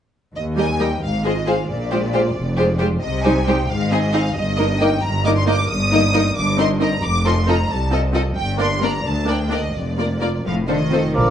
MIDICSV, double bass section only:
0, 0, Header, 1, 2, 480
1, 0, Start_track
1, 0, Tempo, 446429
1, 371, Time_signature, 6, 3, 24, 8
1, 9007, Tempo, 461538
1, 12048, End_track
2, 0, Start_track
2, 0, Title_t, "Double bass section"
2, 0, Program_c, 0, 48
2, 375, Note_on_c, 0, 39, 48
2, 981, Note_off_c, 0, 39, 0
2, 1107, Note_on_c, 0, 32, 46
2, 1706, Note_off_c, 0, 32, 0
2, 1825, Note_on_c, 0, 34, 52
2, 2422, Note_off_c, 0, 34, 0
2, 2539, Note_on_c, 0, 29, 49
2, 3140, Note_off_c, 0, 29, 0
2, 3262, Note_on_c, 0, 36, 53
2, 3865, Note_off_c, 0, 36, 0
2, 3983, Note_on_c, 0, 32, 53
2, 4580, Note_off_c, 0, 32, 0
2, 4691, Note_on_c, 0, 31, 55
2, 5291, Note_off_c, 0, 31, 0
2, 5414, Note_on_c, 0, 31, 58
2, 6011, Note_off_c, 0, 31, 0
2, 6123, Note_on_c, 0, 31, 61
2, 6724, Note_off_c, 0, 31, 0
2, 6842, Note_on_c, 0, 31, 59
2, 7442, Note_off_c, 0, 31, 0
2, 7562, Note_on_c, 0, 29, 59
2, 8162, Note_off_c, 0, 29, 0
2, 8282, Note_on_c, 0, 36, 52
2, 8885, Note_off_c, 0, 36, 0
2, 9008, Note_on_c, 0, 31, 52
2, 9597, Note_off_c, 0, 31, 0
2, 9713, Note_on_c, 0, 38, 46
2, 10316, Note_off_c, 0, 38, 0
2, 10436, Note_on_c, 0, 29, 46
2, 11044, Note_off_c, 0, 29, 0
2, 11165, Note_on_c, 0, 29, 43
2, 11771, Note_off_c, 0, 29, 0
2, 11885, Note_on_c, 0, 34, 52
2, 12048, Note_off_c, 0, 34, 0
2, 12048, End_track
0, 0, End_of_file